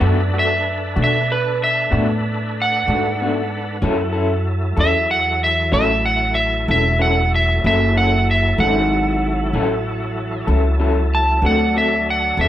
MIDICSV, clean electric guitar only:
0, 0, Header, 1, 2, 480
1, 0, Start_track
1, 0, Key_signature, 3, "minor"
1, 0, Tempo, 634249
1, 10, Time_signature, 12, 3, 24, 8
1, 9446, End_track
2, 0, Start_track
2, 0, Title_t, "Clean electric guitar"
2, 0, Program_c, 0, 27
2, 2, Note_on_c, 0, 47, 83
2, 6, Note_on_c, 0, 57, 84
2, 6, Note_on_c, 0, 66, 93
2, 8, Note_on_c, 0, 62, 91
2, 150, Note_off_c, 0, 47, 0
2, 152, Note_off_c, 0, 57, 0
2, 152, Note_off_c, 0, 66, 0
2, 153, Note_off_c, 0, 62, 0
2, 255, Note_on_c, 0, 66, 57
2, 256, Note_on_c, 0, 62, 49
2, 266, Note_on_c, 0, 57, 46
2, 397, Note_off_c, 0, 62, 0
2, 397, Note_off_c, 0, 66, 0
2, 402, Note_off_c, 0, 57, 0
2, 726, Note_on_c, 0, 66, 52
2, 741, Note_on_c, 0, 62, 54
2, 749, Note_on_c, 0, 57, 42
2, 872, Note_off_c, 0, 66, 0
2, 879, Note_off_c, 0, 62, 0
2, 883, Note_off_c, 0, 57, 0
2, 1444, Note_on_c, 0, 47, 81
2, 1449, Note_on_c, 0, 57, 80
2, 1451, Note_on_c, 0, 66, 89
2, 1456, Note_on_c, 0, 62, 84
2, 1591, Note_off_c, 0, 47, 0
2, 1594, Note_off_c, 0, 57, 0
2, 1595, Note_off_c, 0, 66, 0
2, 1597, Note_off_c, 0, 62, 0
2, 2182, Note_on_c, 0, 66, 58
2, 2192, Note_on_c, 0, 62, 50
2, 2206, Note_on_c, 0, 57, 46
2, 2321, Note_off_c, 0, 66, 0
2, 2325, Note_off_c, 0, 62, 0
2, 2332, Note_off_c, 0, 57, 0
2, 2429, Note_on_c, 0, 47, 54
2, 2436, Note_on_c, 0, 57, 59
2, 2442, Note_on_c, 0, 62, 66
2, 2442, Note_on_c, 0, 66, 62
2, 2564, Note_off_c, 0, 47, 0
2, 2567, Note_off_c, 0, 57, 0
2, 2570, Note_off_c, 0, 62, 0
2, 2571, Note_off_c, 0, 66, 0
2, 2891, Note_on_c, 0, 54, 90
2, 2895, Note_on_c, 0, 61, 84
2, 2904, Note_on_c, 0, 64, 85
2, 2905, Note_on_c, 0, 69, 89
2, 3035, Note_off_c, 0, 54, 0
2, 3037, Note_off_c, 0, 61, 0
2, 3042, Note_off_c, 0, 64, 0
2, 3042, Note_off_c, 0, 69, 0
2, 3123, Note_on_c, 0, 69, 66
2, 3135, Note_on_c, 0, 64, 57
2, 3142, Note_on_c, 0, 61, 49
2, 3271, Note_off_c, 0, 69, 0
2, 3277, Note_off_c, 0, 64, 0
2, 3281, Note_off_c, 0, 61, 0
2, 3607, Note_on_c, 0, 69, 55
2, 3618, Note_on_c, 0, 61, 44
2, 3618, Note_on_c, 0, 64, 50
2, 3753, Note_off_c, 0, 69, 0
2, 3759, Note_off_c, 0, 61, 0
2, 3759, Note_off_c, 0, 64, 0
2, 4327, Note_on_c, 0, 54, 86
2, 4329, Note_on_c, 0, 61, 85
2, 4330, Note_on_c, 0, 64, 79
2, 4340, Note_on_c, 0, 69, 88
2, 4474, Note_off_c, 0, 54, 0
2, 4475, Note_off_c, 0, 61, 0
2, 4475, Note_off_c, 0, 64, 0
2, 4480, Note_off_c, 0, 69, 0
2, 5061, Note_on_c, 0, 69, 53
2, 5065, Note_on_c, 0, 64, 52
2, 5078, Note_on_c, 0, 61, 42
2, 5201, Note_off_c, 0, 69, 0
2, 5203, Note_off_c, 0, 64, 0
2, 5209, Note_off_c, 0, 61, 0
2, 5287, Note_on_c, 0, 54, 56
2, 5291, Note_on_c, 0, 61, 59
2, 5292, Note_on_c, 0, 64, 64
2, 5295, Note_on_c, 0, 69, 60
2, 5434, Note_off_c, 0, 54, 0
2, 5436, Note_off_c, 0, 61, 0
2, 5437, Note_off_c, 0, 64, 0
2, 5438, Note_off_c, 0, 69, 0
2, 5788, Note_on_c, 0, 54, 78
2, 5790, Note_on_c, 0, 61, 75
2, 5795, Note_on_c, 0, 64, 82
2, 5800, Note_on_c, 0, 69, 86
2, 5925, Note_off_c, 0, 54, 0
2, 5926, Note_off_c, 0, 61, 0
2, 5928, Note_off_c, 0, 64, 0
2, 5931, Note_off_c, 0, 69, 0
2, 6022, Note_on_c, 0, 69, 53
2, 6031, Note_on_c, 0, 64, 49
2, 6032, Note_on_c, 0, 61, 43
2, 6162, Note_off_c, 0, 69, 0
2, 6166, Note_off_c, 0, 64, 0
2, 6167, Note_off_c, 0, 61, 0
2, 6499, Note_on_c, 0, 69, 54
2, 6510, Note_on_c, 0, 64, 52
2, 6518, Note_on_c, 0, 61, 49
2, 6640, Note_off_c, 0, 69, 0
2, 6646, Note_off_c, 0, 64, 0
2, 6650, Note_off_c, 0, 61, 0
2, 7222, Note_on_c, 0, 54, 90
2, 7224, Note_on_c, 0, 61, 88
2, 7231, Note_on_c, 0, 64, 89
2, 7231, Note_on_c, 0, 69, 102
2, 7362, Note_off_c, 0, 54, 0
2, 7363, Note_off_c, 0, 61, 0
2, 7367, Note_off_c, 0, 64, 0
2, 7367, Note_off_c, 0, 69, 0
2, 7925, Note_on_c, 0, 69, 63
2, 7935, Note_on_c, 0, 64, 55
2, 7942, Note_on_c, 0, 61, 48
2, 8074, Note_off_c, 0, 69, 0
2, 8079, Note_off_c, 0, 64, 0
2, 8082, Note_off_c, 0, 61, 0
2, 8169, Note_on_c, 0, 54, 60
2, 8171, Note_on_c, 0, 61, 66
2, 8174, Note_on_c, 0, 64, 62
2, 8179, Note_on_c, 0, 69, 73
2, 8316, Note_off_c, 0, 54, 0
2, 8317, Note_off_c, 0, 61, 0
2, 8319, Note_off_c, 0, 64, 0
2, 8321, Note_off_c, 0, 69, 0
2, 8646, Note_on_c, 0, 50, 70
2, 8654, Note_on_c, 0, 60, 77
2, 8657, Note_on_c, 0, 66, 74
2, 8661, Note_on_c, 0, 69, 78
2, 8794, Note_off_c, 0, 50, 0
2, 8799, Note_off_c, 0, 60, 0
2, 8800, Note_off_c, 0, 66, 0
2, 8802, Note_off_c, 0, 69, 0
2, 8888, Note_on_c, 0, 69, 54
2, 8896, Note_on_c, 0, 66, 51
2, 8901, Note_on_c, 0, 60, 42
2, 9035, Note_off_c, 0, 69, 0
2, 9039, Note_off_c, 0, 66, 0
2, 9042, Note_off_c, 0, 60, 0
2, 9376, Note_on_c, 0, 69, 51
2, 9382, Note_on_c, 0, 66, 47
2, 9391, Note_on_c, 0, 60, 44
2, 9446, Note_off_c, 0, 60, 0
2, 9446, Note_off_c, 0, 66, 0
2, 9446, Note_off_c, 0, 69, 0
2, 9446, End_track
0, 0, End_of_file